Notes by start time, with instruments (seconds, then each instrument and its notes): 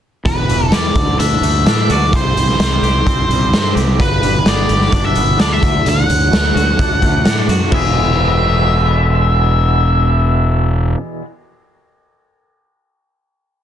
0.25 fingered electric bass E1, clean electric guitar E2, lead electric guitar B4, kick, closed hi-hat
0.49 fingered electric bass E1, clean electric guitar E3, closed hi-hat
0.72 fingered electric bass E2, clean electric guitar G3, lead electric guitar D5, snare, closed hi-hat
0.95 fingered electric bass D2, clean electric guitar D3, kick, closed hi-hat
1.19 fingered electric bass D2, clean electric guitar D4, lead electric guitar E5, closed hi-hat
1.41 fingered electric bass D2, clean electric guitar A3, closed hi-hat
1.66 fingered electric bass A2, clean electric guitar D4, snare, closed hi-hat
1.89 fingered electric bass D2, clean electric guitar F#4, lead electric guitar D5, closed hi-hat
2.13 fingered electric bass C2, clean electric guitar C3, lead electric guitar C5, kick, closed hi-hat
2.36 fingered electric bass C2, clean electric guitar E3, closed hi-hat
2.49 snare
2.59 fingered electric bass C2, clean electric guitar G3, snare, closed hi-hat
2.82 fingered electric bass C2, clean electric guitar G4, closed hi-hat
3.06 fingered electric bass C2, clean electric guitar C4, kick, closed hi-hat
3.29 fingered electric bass C2, clean electric guitar G3, closed hi-hat
3.52 fingered electric bass G2, clean electric guitar C4, snare, closed hi-hat
3.75 fingered electric bass C2, clean electric guitar G4, closed hi-hat
3.99 fingered electric bass G1, clean electric guitar G2, lead electric guitar B4, kick, closed hi-hat
4.23 fingered electric bass G1, clean electric guitar G3, closed hi-hat
4.46 fingered electric bass G1, clean electric guitar B3, lead electric guitar D5, snare, closed hi-hat
4.69 fingered electric bass G1, clean electric guitar G4, closed hi-hat
4.81 snare
4.92 fingered electric bass G1, clean electric guitar D4, lead electric guitar D5, kick, closed hi-hat
5.06 lead electric guitar E5
5.15 fingered electric bass G1, clean electric guitar B3, closed hi-hat
5.38 fingered electric bass D2, clean electric guitar D4, lead electric guitar D5, snare, closed hi-hat
5.52 lead electric guitar E5
5.62 fingered electric bass D2, clean electric guitar D3, kick, closed hi-hat
5.84 fingered electric bass D2, clean electric guitar D3, closed hi-hat
5.89 lead electric guitar F#5
6.09 fingered electric bass D2, clean electric guitar F#3, closed hi-hat
6.32 fingered electric bass D2, clean electric guitar A3, snare, closed hi-hat
6.55 fingered electric bass D2, clean electric guitar F#4, closed hi-hat
6.79 fingered electric bass D2, clean electric guitar D4, kick, closed hi-hat
7.02 fingered electric bass D2, clean electric guitar A3, kick, closed hi-hat
7.25 fingered electric bass A2, clean electric guitar D4, snare, closed hi-hat
7.48 fingered electric bass F#2, clean electric guitar F#4, closed hi-hat
7.71 fingered electric bass E1, clean electric guitar E2 B2 E3 G#3 B3, lead electric guitar E5, kick, crash
7.75 clean electric guitar G#4